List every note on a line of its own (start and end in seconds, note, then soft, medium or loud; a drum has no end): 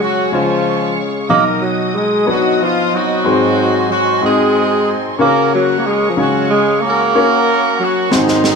0.00 0.28 C#3 soft
0.00 0.33 F#3 medium
0.00 0.32 G#3 medium
0.00 0.33 C#4 medium
0.00 0.34 F#4 medium
0.00 0.31 F#4 medium
0.00 0.33 G#4 medium
0.00 0.33 C#5 medium
0.00 1.28 C#5 medium
0.00 0.29 F#5 soft
0.00 1.28 G#5 soft
0.00 0.31 C#6 medium
0.32 1.26 C#3 soft
0.32 1.02 F3 medium
0.32 0.95 G#3 soft
0.32 1.26 G#3 soft
0.32 0.95 C#4 soft
0.32 1.26 C#4 soft
0.32 0.95 F4 soft
0.32 1.05 F4 medium
0.32 0.95 G#4 soft
0.32 0.95 C#5 medium
0.32 1.29 F5 soft
0.32 1.29 C#6 medium
1.29 2.23 B2 soft
1.29 1.92 F#3 medium
1.29 1.44 A#3 medium
1.29 1.92 D#4 medium
1.29 2.23 D#4 medium
1.29 1.92 F#4 soft
1.29 1.64 F#4 soft
1.29 1.60 A#4 medium
1.29 5.14 D#5 medium
1.29 1.92 D#5 medium
1.29 3.22 D#6 medium
1.61 1.96 F#3 medium
1.61 1.96 F#4 medium
1.95 2.27 G#3 medium
1.95 2.28 G#4 medium
2.26 2.63 F#3 medium
2.26 2.89 B3 medium
2.26 2.33 D4 soft
2.26 2.89 B4 soft
2.26 2.89 C#5 medium
2.31 2.92 D#4 soft
2.31 2.61 F#4 medium
2.61 2.96 F3 medium
2.61 2.93 F4 medium
2.94 3.89 F#3 medium
2.94 3.86 C4 medium
2.94 3.86 D#4 medium
2.94 3.90 F#4 medium
3.24 4.18 G#2 soft
3.24 3.87 C4 medium
3.24 3.87 D#4 medium
3.24 3.87 F#4 medium
3.24 3.87 G#4 medium
3.24 3.31 B4 soft
3.24 5.17 G#5 soft
3.24 5.17 C6 medium
3.32 3.91 C5 medium
3.90 4.25 F#3 medium
3.90 4.20 F#4 medium
4.21 4.95 G#3 medium
4.21 4.84 C4 medium
4.21 5.16 C4 medium
4.21 4.84 D#4 soft
4.21 5.16 D#4 medium
4.21 4.84 F#4 soft
4.21 4.84 G#4 medium
4.21 4.96 G#4 medium
4.21 4.85 D#5 medium
5.18 6.12 C#3 medium
5.18 5.81 A#3 medium
5.18 5.50 A#3 medium
5.18 5.81 C#4 medium
5.18 6.13 C#4 medium
5.18 5.82 F#4 medium
5.18 5.53 F#4 medium
5.18 5.82 A#4 medium
5.18 8.08 C#5 medium
5.18 5.82 C#5 medium
5.18 6.15 A#5 soft
5.18 7.11 C#6 medium
5.22 5.51 A#4 medium
5.54 5.80 F#3 medium
5.54 5.85 F#4 medium
5.79 5.88 A#3 soft
5.86 6.12 G#3 medium
5.86 6.17 G#4 medium
6.10 6.19 F3 soft
6.15 7.10 C#3 soft
6.15 6.49 F#3 medium
6.15 6.79 G#3 medium
6.15 6.79 C#4 soft
6.15 6.85 C#4 medium
6.15 6.80 G#4 soft
6.15 6.80 C#5 medium
6.15 7.12 F5 medium
6.15 6.79 F5 soft
6.15 7.12 G#5 soft
6.21 6.51 F#4 medium
6.50 6.83 G#3 medium
6.50 6.81 G#4 medium
6.82 7.79 A#3 medium
6.86 7.77 C#4 medium
6.86 7.77 F#4 medium
6.86 7.81 A#4 medium
7.12 7.77 A#3 medium
7.12 7.77 C#4 medium
7.12 7.77 F#4 medium
7.12 7.77 A#4 medium
7.12 7.77 C#5 medium
7.12 8.55 F#5 soft
7.12 8.10 A#5 soft
7.12 8.09 C#6 medium
7.80 8.09 F#3 medium
7.80 8.13 F#4 medium
8.10 8.55 G#2 soft
8.10 8.55 D#3 medium
8.10 8.55 F#3 medium
8.10 8.55 C4 medium
8.10 8.55 C4 soft
8.10 8.55 D#4 soft
8.10 8.55 F#4 soft
8.10 8.55 G#4 soft
8.10 8.55 C5 medium
8.10 8.55 D#5 medium
8.10 8.55 G#5 soft
8.10 8.55 C6 medium
8.10 snare soft
8.16 8.55 D#4 medium
8.28 snare soft
8.44 snare medium